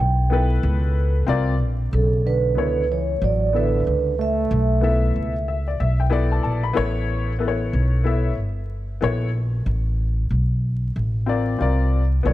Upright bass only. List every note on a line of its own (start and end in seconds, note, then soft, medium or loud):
0.00 0.61 B1 medium
0.63 1.25 C#2 loud
1.28 1.61 C2 loud
1.61 1.91 A#1 loud
1.93 2.57 B1 loud
2.57 3.19 C#2 medium
3.22 3.83 A1 loud
3.87 4.48 C#2 medium
4.51 5.12 B1 loud
5.16 5.77 C#2 medium
5.80 6.41 B1 medium
6.44 6.75 A#1 medium
6.77 7.70 A1 medium
7.73 8.37 B1 medium
8.37 8.99 G1 medium
9.02 9.64 A#1 loud
9.66 10.28 A1 loud
10.31 10.92 B1 medium
10.96 11.57 A1 medium
11.61 12.22 C2 medium
12.26 12.33 B1 loud